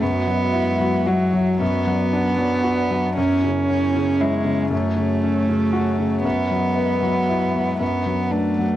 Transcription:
Already playing: analog synth pad F#4
0.01 grand piano F#2, analog synth pad G#3 E5, cello B3
0.28 grand piano F#3
0.53 grand piano E4
0.80 grand piano F#3
1.06 cello F#3, grand piano F#4
1.34 grand piano F#3
1.61 grand piano F#2, cello B3, analog synth pad B3 D5
1.87 grand piano F#3
2.13 grand piano D4
2.38 grand piano F#3
2.64 grand piano F#4
2.91 grand piano F#3
3.17 grand piano F#2, cello C#4, analog synth pad E4 C#5
3.44 grand piano C#3
3.70 grand piano C#4
3.96 grand piano C#3
4.20 cello G#3, grand piano E4
4.45 grand piano C#3
4.70 grand piano F#2, cello A3, analog synth pad A3 F#4
4.96 grand piano C#3
5.23 grand piano C#4
5.49 grand piano C#3
5.73 grand piano F#4
5.99 grand piano C#3
6.24 grand piano F#2, analog synth pad G#3 E5, cello B3
6.51 grand piano F#3
6.77 grand piano B3
7.03 grand piano F#3
7.29 grand piano E4
7.56 grand piano F#3
7.80 grand piano F#2, cello B3, analog synth pad B3 D4 B4
8.06 grand piano F#3
8.31 cello A3, grand piano D4
8.59 grand piano F#3

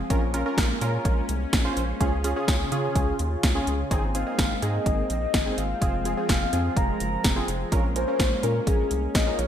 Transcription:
Already playing: analog synth pad G#3
0.10 analog synth bass A#1, analog synth pad A#3 C#4, synth keys C#4 F4 A#4, kick, closed hi-hat
0.34 synth keys C#4 F4 A#4, closed hi-hat
0.46 synth keys C#4 F4 A#4
0.58 analog synth bass A#1, kick, snare, closed hi-hat
0.81 analog synth bass A#2, synth keys C#4 F4 A#4, closed hi-hat
1.05 analog synth bass A#1, kick, closed hi-hat
1.29 analog synth bass C2, closed hi-hat
1.53 analog synth bass A#1, kick, snare, closed hi-hat
1.65 synth keys C#4 F4 C5
1.77 analog synth bass A#1, closed hi-hat
2.00 analog synth bass C#2, analog synth pad C#3 F4 G#4, synth keys C#4 F4 G#4, kick, closed hi-hat
2.24 synth keys C#4 F4 G#4, closed hi-hat
2.36 synth keys C#4 F4 G#4
2.48 analog synth bass C#2, kick, snare, closed hi-hat
2.72 analog synth bass C#3, synth keys C#4 F4 G#4, closed hi-hat
2.96 analog synth bass C#2, kick, closed hi-hat
3.19 analog synth bass D#2, closed hi-hat
3.43 analog synth bass C#2, kick, snare, closed hi-hat
3.55 synth keys C#4 F4 G#4
3.67 analog synth bass C#2, closed hi-hat
3.91 analog synth bass G#1, analog synth pad G#3 A#3 C4, synth keys C4 D#4 G#4, kick, closed hi-hat
4.15 synth keys C4 D#4 G#4, soft synth lead F5, closed hi-hat
4.27 synth keys C4 D#4 G#4
4.39 analog synth bass G#1, kick, snare, closed hi-hat
4.62 analog synth bass G#2, synth keys C4 D#4 G#4, soft synth lead D#5, closed hi-hat
4.86 analog synth bass G#1, kick, closed hi-hat
5.10 analog synth bass A#1, soft synth lead D#5, closed hi-hat
5.34 analog synth bass G#1, kick, snare, closed hi-hat
5.46 synth keys C4 D#4 G#4
5.58 analog synth bass G#1, soft synth lead F5, closed hi-hat
5.82 analog synth bass F1, analog synth pad F3, synth keys C4 F4 G#4, kick, closed hi-hat
6.05 synth keys C4 F4 G#4, closed hi-hat
6.17 synth keys C4 F4 G#4
6.29 analog synth bass F1, soft synth lead F5, kick, snare, closed hi-hat
6.53 analog synth bass F2, synth keys C4 F4 G#4, closed hi-hat
6.77 analog synth bass F1, soft synth lead A#5, kick, closed hi-hat
7.00 analog synth bass F#1, closed hi-hat
7.24 analog synth bass F1, kick, snare, closed hi-hat
7.36 synth keys C4 F4 G#4
7.48 analog synth bass F1, closed hi-hat
7.72 analog synth bass A#1, analog synth pad A#3 C#4, synth keys C#4 F4 A#4, kick, closed hi-hat
7.96 synth keys C#4 F4 A#4, soft synth lead C5, closed hi-hat
8.08 synth keys C#4 F4 A#4
8.20 analog synth bass A#1, kick, snare, closed hi-hat
8.43 analog synth bass A#2, synth keys C#4 F4 A#4, soft synth lead A#4, closed hi-hat
8.67 analog synth bass A#1, soft synth lead G#4, kick, closed hi-hat
8.91 analog synth bass C2, closed hi-hat
9.15 analog synth bass A#1, soft synth lead D#5, kick, snare, closed hi-hat
9.27 synth keys C#4 F4 A#4
9.39 analog synth bass A#1, soft synth lead C#5, closed hi-hat

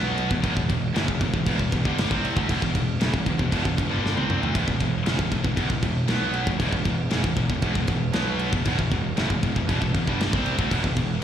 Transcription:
Already playing: picked electric bass B1, distorted electric guitar B2 F#3 B3
0.18 crash
0.29 picked electric bass E1, distorted electric guitar E2 B2, kick
0.42 picked electric bass E1, distorted electric guitar E2 B2, kick, crash
0.56 picked electric bass E1, distorted electric guitar E2 B2, kick
0.69 picked electric bass E1, distorted electric guitar E2 B2, kick, crash
0.94 picked electric bass F#1, distorted electric guitar F#2 C#3, snare, crash
1.07 picked electric bass E1, distorted electric guitar E2 B2, kick
1.21 picked electric bass E1, distorted electric guitar E2 B2, kick, crash
1.34 picked electric bass E1, distorted electric guitar E2 B2, kick
1.46 picked electric bass E1, distorted electric guitar E2 B2, kick, crash
1.59 picked electric bass E1, distorted electric guitar E2 B2, kick
1.72 picked electric bass E1, distorted electric guitar E2 B2, kick, crash
1.85 picked electric bass G1, distorted electric guitar G2 D3 G3, kick
1.98 snare, crash
2.10 picked electric bass C2, distorted electric guitar C3 G3 C4, kick
2.24 crash
2.36 picked electric bass D2, distorted electric guitar D3 A3, kick
2.49 picked electric bass E1, distorted electric guitar E2 B2, kick, crash
2.62 picked electric bass E1, distorted electric guitar E2 B2, kick
2.74 picked electric bass E1, distorted electric guitar E2 B2, kick, crash
3.00 picked electric bass F#1, distorted electric guitar F#2 C#3, snare, crash
3.12 picked electric bass E1, distorted electric guitar E2 B2, kick
3.26 picked electric bass E1, distorted electric guitar E2 B2, kick, crash
3.38 picked electric bass E1, distorted electric guitar E2 B2, kick
3.51 picked electric bass E1, distorted electric guitar E2 B2, kick, crash
3.63 picked electric bass E1, distorted electric guitar E2 B2, kick
3.77 picked electric bass E1, distorted electric guitar E2 B2, kick, crash
3.89 picked electric bass G1, distorted electric guitar G2 D3 G3
4.06 snare
4.15 picked electric bass C2, distorted electric guitar C3 G3 C4, high tom
4.30 mid tom
4.41 picked electric bass D2, distorted electric guitar D3 A3, floor tom
4.54 picked electric bass E1, distorted electric guitar E2 B2, kick, crash
4.67 picked electric bass E1, distorted electric guitar E2 B2, kick
4.80 picked electric bass E1, distorted electric guitar E2 B2, kick, crash
5.06 picked electric bass F#1, distorted electric guitar F#2 C#3, snare, crash
5.18 picked electric bass E1, distorted electric guitar E2 B2, kick
5.31 picked electric bass E1, distorted electric guitar E2 B2, kick, crash
5.44 picked electric bass E1, distorted electric guitar E2 B2, kick
5.56 picked electric bass E1, distorted electric guitar E2 B2, kick, crash
5.69 picked electric bass E1, distorted electric guitar E2 B2, kick
5.82 picked electric bass E1, distorted electric guitar E2 B2, kick, crash
6.08 picked electric bass B1, distorted electric guitar B2 F#3 B3, snare, crash
6.33 crash
6.47 picked electric bass E1, distorted electric guitar E2 B2, kick
6.59 picked electric bass E1, distorted electric guitar E2 B2, kick, crash
6.72 picked electric bass E1, distorted electric guitar E2 B2, kick
6.85 picked electric bass E1, distorted electric guitar E2 B2, kick, crash
7.10 picked electric bass F#1, distorted electric guitar F#2 C#3, snare, crash
7.23 picked electric bass E1, distorted electric guitar E2 B2, kick
7.36 picked electric bass E1, distorted electric guitar E2 B2, kick, crash
7.50 picked electric bass E1, distorted electric guitar E2 B2, kick
7.62 picked electric bass E1, distorted electric guitar E2 B2, kick, crash
7.75 picked electric bass E1, distorted electric guitar E2 B2, kick
7.87 picked electric bass E1, distorted electric guitar E2 B2, kick, crash
8.13 picked electric bass B1, distorted electric guitar B2 F#3 B3, snare, crash
8.39 crash
8.53 picked electric bass E1, distorted electric guitar E2 B2, kick
8.65 picked electric bass E1, distorted electric guitar E2 B2, kick, crash
8.79 picked electric bass E1, distorted electric guitar E2 B2, kick
8.91 picked electric bass E1, distorted electric guitar E2 B2, kick, crash
9.17 picked electric bass F#1, distorted electric guitar F#2 C#3, snare, crash
9.30 picked electric bass E1, distorted electric guitar E2 B2, kick
9.43 picked electric bass E1, distorted electric guitar E2 B2, kick, crash
9.55 picked electric bass E1, distorted electric guitar E2 B2, kick
9.69 picked electric bass E1, distorted electric guitar E2 B2, kick, crash
9.82 picked electric bass E1, distorted electric guitar E2 B2, kick
9.95 picked electric bass E1, distorted electric guitar E2 B2, kick, crash
10.07 picked electric bass G1, distorted electric guitar G2 D3 G3, kick
10.21 snare, crash
10.33 picked electric bass C2, distorted electric guitar C3 G3 C4, kick
10.46 crash
10.58 picked electric bass D2, distorted electric guitar D3 A3, kick
10.71 picked electric bass E1, distorted electric guitar E2 B2, kick, crash
10.83 picked electric bass E1, distorted electric guitar E2 B2, kick
10.96 picked electric bass E1, distorted electric guitar E2 B2, kick, crash

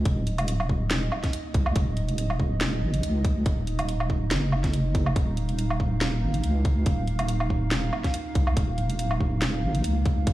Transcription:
Already playing: analog synth pad A#3 D#4 D#5
0.05 wobble bass D#1, kick, closed hi-hat
0.27 closed hi-hat
0.38 closed hi-hat, low woodblock
0.48 closed hi-hat
0.60 low woodblock
0.69 kick
0.91 snare, closed hi-hat
1.12 low woodblock
1.24 kick, snare, closed hi-hat
1.33 closed hi-hat
1.54 wobble bass C2, kick, closed hi-hat
1.66 low woodblock
1.76 wobble bass D#1, kick, closed hi-hat
1.97 closed hi-hat
2.09 closed hi-hat
2.18 closed hi-hat
2.30 low woodblock
2.40 kick
2.61 snare, closed hi-hat
2.82 wobble bass G#1
2.94 closed hi-hat
3.03 wobble bass C#2, closed hi-hat
3.25 kick, closed hi-hat
3.46 wobble bass D#1, kick, closed hi-hat
3.67 closed hi-hat
3.79 closed hi-hat, low woodblock
3.89 closed hi-hat
4.00 low woodblock
4.10 kick
4.31 wobble bass F#1, snare, closed hi-hat
4.52 low woodblock
4.64 kick, snare, closed hi-hat
4.74 closed hi-hat
4.95 kick, closed hi-hat
5.06 low woodblock
5.16 wobble bass D#1, analog synth pad F5, kick, closed hi-hat
5.37 closed hi-hat
5.49 closed hi-hat
5.59 closed hi-hat
5.70 low woodblock
5.80 kick
6.01 snare, closed hi-hat
6.22 wobble bass G#1
6.34 closed hi-hat
6.43 wobble bass C#2, closed hi-hat
6.65 kick, closed hi-hat
6.86 wobble bass D#1, kick, closed hi-hat
7.08 closed hi-hat
7.19 closed hi-hat, low woodblock
7.29 closed hi-hat
7.40 low woodblock
7.50 kick
7.71 snare, closed hi-hat
7.93 low woodblock
8.04 kick, snare, closed hi-hat
8.14 closed hi-hat
8.35 wobble bass C2, kick, closed hi-hat
8.47 low woodblock
8.57 wobble bass D#1, kick, closed hi-hat
8.78 closed hi-hat
8.90 closed hi-hat
8.99 closed hi-hat
9.11 low woodblock
9.21 kick
9.42 snare, closed hi-hat
9.63 wobble bass G#1
9.75 closed hi-hat
9.84 wobble bass C#2, closed hi-hat
10.05 kick, closed hi-hat
10.27 wobble bass D#1, kick, closed hi-hat

